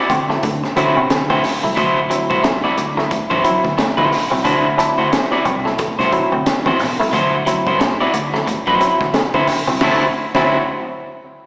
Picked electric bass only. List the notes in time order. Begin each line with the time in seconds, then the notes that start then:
0.10 D2
0.44 D3
0.77 D3
0.97 C3
1.11 D3
1.30 D2
1.65 C2
1.77 D2
2.31 C2
2.78 D2
3.31 F#2
3.65 D2
3.98 D3
4.32 C2
4.45 D2
4.99 D2
5.46 C2
5.99 C2
6.33 D2
6.66 A1
6.80 B1
7.00 C2
7.13 D2
7.67 C2
8.14 D2
8.68 F#2
9.01 D2
9.34 D3
9.68 C2
9.81 D2
10.35 D2